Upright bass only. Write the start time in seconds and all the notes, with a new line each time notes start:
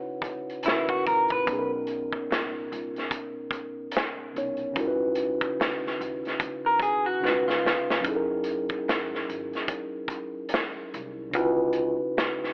1.07 A#1
1.48 B1
2.30 C#2
2.72 C#2
4.36 C2
4.77 C#2
5.60 D#2
6.00 D#2
6.41 C#3
6.80 D#2
7.24 C#2
7.48 C#2
7.65 C#3
8.05 F#1
8.88 G#1
9.29 G#1
10.94 C2
11.34 C#2
12.17 D#2